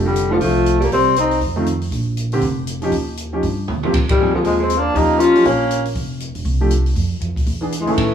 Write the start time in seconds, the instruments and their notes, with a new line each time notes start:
Already playing: upright bass F1
0.05 alto saxophone D3, tenor saxophone G3
0.16 closed hi-hat
0.30 alto saxophone D3, grand piano F3 A3 D4 F4, tenor saxophone F3
0.40 upright bass C2, alto saxophone F3, tenor saxophone A3, kick, open hi-hat
0.66 closed hi-hat
0.80 alto saxophone G3, tenor saxophone A#3, open hi-hat
0.91 upright bass C2, alto saxophone G3, tenor saxophone C4, kick, open hi-hat
1.16 alto saxophone C4, tenor saxophone D#4, closed hi-hat
1.31 open hi-hat
1.41 upright bass F2, kick, open hi-hat
1.56 grand piano D#3 A3 C4 F4
1.66 closed hi-hat
1.81 open hi-hat
1.91 upright bass A#1, kick, open hi-hat
2.17 closed hi-hat
2.32 grand piano D3 A#3 C4 G4, open hi-hat
2.41 upright bass F1, kick, open hi-hat
2.67 closed hi-hat
2.82 grand piano F3 C#4 D#4 G4, open hi-hat
2.92 upright bass D#2, kick, open hi-hat
3.17 closed hi-hat
3.33 grand piano F3 C#4 D#4 G4
3.43 upright bass G2, kick, open hi-hat
3.68 upright bass D#2, mid tom
3.83 grand piano F3 A#3 C4 G4, floor tom
3.93 upright bass G#2, kick, ride
4.09 alto saxophone D#3, tenor saxophone G3, kick, ride
4.19 grand piano F3 A#3 C4 G#4
4.34 alto saxophone D3, tenor saxophone F3, muted upright bass stroke
4.44 upright bass D#2, alto saxophone F3, tenor saxophone G#3, kick, open hi-hat
4.60 alto saxophone G#3, tenor saxophone C4
4.70 closed hi-hat
4.77 alto saxophone A#3, tenor saxophone D4
4.93 upright bass D#2, grand piano F3 C#4 D#4 G4, alto saxophone A#3, tenor saxophone D#4, kick, open hi-hat
5.19 alto saxophone C#4, tenor saxophone F4, closed hi-hat
5.35 grand piano F3 C#4 D#4 G4, open hi-hat
5.45 upright bass A#1, alto saxophone A#3, tenor saxophone C#4, kick, open hi-hat
5.71 closed hi-hat
5.85 open hi-hat
5.95 upright bass F1, kick, open hi-hat
6.20 closed hi-hat
6.35 upright bass E1, open hi-hat
6.45 upright bass C2, kick, open hi-hat
6.61 grand piano F3 A3 D4 G4
6.71 closed hi-hat
6.86 open hi-hat
6.96 upright bass F2, kick, open hi-hat
7.21 upright bass F2, closed hi-hat
7.36 kick, open hi-hat
7.46 upright bass E2, kick, open hi-hat
7.61 grand piano E3 B3 D4 G#4
7.72 closed hi-hat
7.79 alto saxophone E3, tenor saxophone G#3
7.86 grand piano A2 D#3 B3 C#4 G#4, alto saxophone E3, tenor saxophone A3, muted upright bass stroke, open hi-hat
7.97 upright bass A2, kick, ride